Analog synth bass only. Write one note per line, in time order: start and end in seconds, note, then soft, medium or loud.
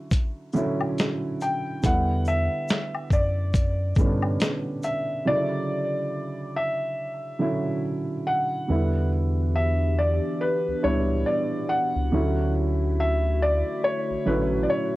1.84 2.48 E2 loud
3.11 3.93 F#2 medium
3.97 4.37 G2 medium
8.70 10.20 E2 loud
10.68 10.74 C#2 soft
10.85 11.24 C#2 medium
11.96 12.12 C#2 medium
12.13 13.63 D2 loud
14.10 14.17 A1 soft
14.27 14.67 A1 medium